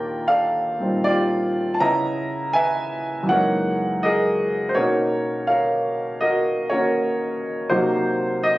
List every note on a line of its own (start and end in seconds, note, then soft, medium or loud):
0.00 1.79 D#2 medium
0.00 0.78 A#2 medium
0.00 1.80 A#3 medium
0.00 1.80 D4 soft
0.00 0.80 F4 medium
0.00 1.04 G4 medium
0.00 1.01 A#4 medium
0.00 0.29 D5 medium
0.00 0.26 F5 medium
0.00 0.32 G5 medium
0.00 1.74 A5 medium
0.28 1.76 A4 medium
0.28 1.03 D5 medium
0.28 1.06 F5 medium
0.79 1.80 A#2 soft
0.79 1.80 G3 soft
0.79 1.81 C4 soft
0.79 1.81 D#4 soft
0.79 1.05 F4 soft
1.04 1.77 F4 medium
1.04 1.76 G4 medium
1.04 1.63 D5 medium
1.74 1.80 A5 medium
1.80 3.24 C#3 medium
1.80 3.29 B3 soft
1.80 3.29 C#4 soft
1.80 3.30 E4 medium
1.80 3.25 D#5 medium
1.80 2.54 E5 medium
1.80 2.50 A#5 medium
2.53 3.25 B4 medium
2.53 3.25 E5 medium
2.53 3.30 G#5 medium
3.23 4.73 F#2 medium
3.23 4.74 C#3 soft
3.27 4.75 E3 soft
3.27 4.76 G#3 soft
3.27 4.03 A#4 medium
3.27 3.98 F#5 medium
3.32 4.74 A#3 soft
3.32 4.77 D#4 medium
3.32 4.73 C#5 medium
4.03 4.73 G#4 medium
4.03 4.73 A#4 medium
4.03 4.60 D#5 medium
4.69 4.75 C5 medium
4.74 7.69 B2 medium
4.74 6.69 A#3 soft
4.74 6.72 C#4 soft
4.74 6.19 F#4 medium
4.74 5.48 A#4 medium
4.74 5.48 C#5 medium
4.79 7.69 D#4 medium
5.47 6.20 A#4 medium
5.47 6.68 C#5 medium
5.47 6.18 F5 medium
6.21 6.70 F#4 medium
6.21 6.70 A#4 medium
6.21 6.67 D#5 medium
6.70 7.69 A#3 soft
6.70 7.66 F#4 soft
6.70 7.66 A#4 medium
6.70 7.40 C#5 medium
6.74 7.71 C#4 soft
7.70 8.58 C3 medium
7.70 8.58 F#3 medium
7.70 8.58 A#3 medium
7.70 8.58 D#4 medium
7.70 8.58 F#4 medium
7.70 8.40 C5 medium
8.43 8.58 D#5 medium